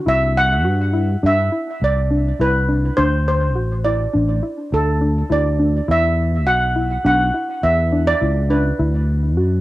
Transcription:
0.06 C2 E4 E5
0.37 F#5
0.65 G2 F#4
0.93 E4
1.23 G2 D4 E5
1.52 E4
1.81 C2 D5
2.11 D4
2.39 C2 E4 B4
2.68 D4
2.97 D2 D4 C5
3.28 C5
3.55 A1 F#4
3.84 E4 D5
4.13 A1 D4
4.43 E4
4.72 D2 A4
5.01 D4
5.30 D2 E4 D5
5.59 D4
5.88 E2 E4 E5
6.47 B1 F#4 F#5
6.76 E4
7.04 B1 D4 F#5
7.34 E4
7.63 E2 E5
7.92 D4
8.07 D5
8.21 C#2 E4
8.50 D4 B4
8.79 D2 E4
9.37 F#2 F#4

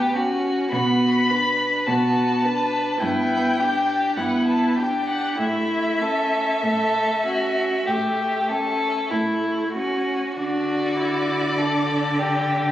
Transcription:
Already playing: A2 B3 G4 A5
0.14 C#4 F#4
0.71 B2 B3 F#4 B5
1.29 D4 B4
1.86 B2 B3 F#4 A5
2.44 D4 B4
3.00 G2 B3 E4 G5
3.59 D4 G4
4.16 G2 B3 E4 F#5
4.46 A5
4.76 D4 G4 G5
5.06 F#5
5.37 A2 A3 E4 E5
6.01 C#4 A4
6.63 A2 A3 A4
7.25 C#4 F#4
7.86 A2 A3 G4
8.49 C#4 A4
9.10 A2 A3 E4
9.74 C#4 F#4
10.36 D3 D4 F#4 D5
10.97 E4
11.58 D4 A4
12.19 G4

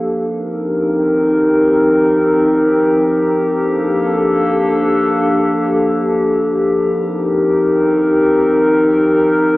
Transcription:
Already playing: F3 A#3 D4 G4 A4
0.27 F3 C4 D#4 G4 A#4
3.58 A#3 D4 A4
6.89 C4 D#4 A#4

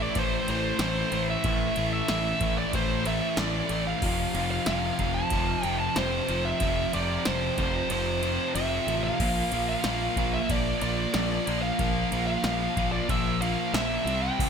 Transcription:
Already playing: A2 E3 A3
0.02 D5
0.15 A1 A2 E3 A3 C5, kick, ride
0.48 A1 A2 E3 A3 C5, ride
0.79 A1 A2 E3 A3 C5, snare, ride
1.12 A1 A2 E3 A3, ride
1.30 E5
1.44 A1 A2 E3 A3, kick, ride
1.76 A1 A2 E3 A3, ride
1.93 E5
2.08 A1 A2 E3 A3, snare, ride
2.41 A1 A2 E3 A3, kick, ride
2.58 D5
2.73 A1 A2 E3 A3 C5, kick, ride
3.05 A2 E3 A3 E5, ride
3.37 A1 A2 E3 A3 D5, snare, ride
3.69 A1 A2 E3 A3, ride
3.87 F5
4.02 F1 F2 C3 F3, kick, crash
4.34 F1 F2 C3 F3, ride
4.51 F5
4.66 F1 F2 C3 F3 F5, snare, ride
4.99 F1 F2 C3 F3, kick, ride
5.14 A5
5.30 F1 F2 C3 F3, kick, ride
5.63 F1 F2 C3 F3 G5, ride
5.80 A5
5.96 F1 F2 C3 F3 C5, snare, ride
6.29 F1 F2 C3 F3, ride
6.45 E5
6.60 F1 F2 C3 F3, kick, ride
6.93 F1 F2 C3 F3 D5, ride
7.25 F1 F2 C3 F3 C5, snare, ride
7.58 F1 F2 C3 F3 C5, kick, ride
7.90 F1 F2 C3 F3 C5, ride
8.22 F2 C3 F3, ride
8.54 F1 F2 C3 F3 E5, ride
8.87 A1 F2 C3 F3, ride
9.04 F5
9.20 A#1 A#2 F3 A#3, kick, crash
9.52 A#1 A#2 F3 A#3, ride
9.69 F5
9.84 A#1 A#2 F3 A#3, snare, ride
10.16 A#1 A#2 F3 A#3, kick, ride
10.34 E5
10.49 A#1 A#2 F3 A#3 D5, kick, ride
10.81 A#1 A#2 F3 A#3 D5, ride
11.14 A#1 A#2 F3 A#3 D5, snare, ride
11.47 A#1 A#2 F3 A#3, ride
11.62 F5
11.79 A#1 A#2 F3 A#3, kick, ride
12.11 A#1 A#2 F3 A#3, ride
12.27 F5
12.43 A#1 A#2 F3 A#3, snare, ride
12.76 A#1 A#2 F3 A#3, kick, ride
12.92 D5
13.08 A#1 A#2 F3 A#3 E5, kick, ride
13.40 A#2 F3 A#3 F5, ride
13.73 A#1 A#2 F3 A#3 E5, snare, ride
14.05 C2 C3 G3 C4, ride
14.22 G5
14.38 C2 C3 G3 C4, kick, crash

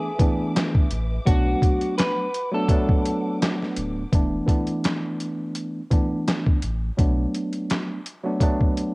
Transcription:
Already playing: G#4 B4 E5 D6
0.19 E3 A3 B3 D4, kick, closed hi-hat
0.56 snare, clap, closed hi-hat
0.75 kick
0.91 A1, closed hi-hat
1.25 B1 F#3 A3 B3 D4 F#4, kick, closed hi-hat
1.30 F#5
1.62 kick, closed hi-hat
1.81 closed hi-hat
1.98 B4, snare, clap, closed hi-hat
2.34 closed hi-hat
2.52 F#3 A3 B3 D4 A4
2.69 F#3 A3 B3 D4, kick, closed hi-hat
2.89 kick
3.06 closed hi-hat
3.42 snare, clap, closed hi-hat
3.62 snare
3.76 D1, closed hi-hat
4.12 E1 E3 A3 B3 D4, kick, closed hi-hat
4.46 E3 A3 B3 D4, kick, closed hi-hat
4.67 closed hi-hat
4.84 snare, clap, closed hi-hat
5.20 closed hi-hat
5.55 closed hi-hat
5.90 E3 A3 B3 D4, kick, closed hi-hat
6.28 snare, clap, closed hi-hat
6.46 kick
6.62 A1, closed hi-hat
6.97 B1 F#3 A3 B3 D4, kick, closed hi-hat
7.34 closed hi-hat
7.53 closed hi-hat
7.70 snare, clap, closed hi-hat
8.06 closed hi-hat
8.23 F#3 A3 B3 D4
8.40 F#3 A3 B3 D4, kick, closed hi-hat
8.61 kick
8.77 closed hi-hat

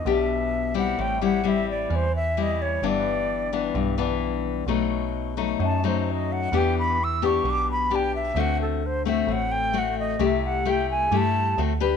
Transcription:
Already playing: D#5
0.05 B1 B2 B3 D4 G4
0.11 E5
0.74 G3 C4 E4 F#5
0.98 A1 A2 G5
1.21 G3 C4 E4 F#5
1.44 G3 C4 E4
1.48 E5
1.70 D5
1.90 E2 E3
1.95 C5
2.16 E5
2.37 G3 C4 E4
2.42 D#5
2.62 C#5
2.82 G1 G2 E3 B3 D4
2.87 D5
3.53 E3 B3 D4
3.74 B1 G2
3.98 E3 B3 D4
4.66 B1 B2 F#3 A3 D#4
5.37 F#3 A3 D#4
5.59 F#2
5.65 A5
5.84 F#3 A3 D#4 C5
6.11 D#5
6.32 F#5
6.52 E2 E3 B3 D4 G4
6.57 G5
6.79 B5
7.04 E6
7.22 B3 D4 G4 C#6
7.44 B1 B2
7.50 D6
7.72 B5
7.91 B3 D4 G4
7.96 G5
8.16 E5
8.35 D2 D3 A3 C4 F#4
8.40 F#5
8.62 A4
8.86 C5
9.05 A3 C4 F#4 E5
9.27 A1 A2
9.32 F#5
9.52 G5
9.73 A3 C4 F#4
9.78 F#5
9.99 D#5
10.19 C2 C3 A3 E4 G4
10.25 E5
10.45 F#5
10.65 A3 E4 G4
10.70 G5
10.91 G#5
11.11 G2 G3 A3 E4 G4
11.17 A5
11.58 D2 A3 C4 F#4
11.80 D4 G4 B4

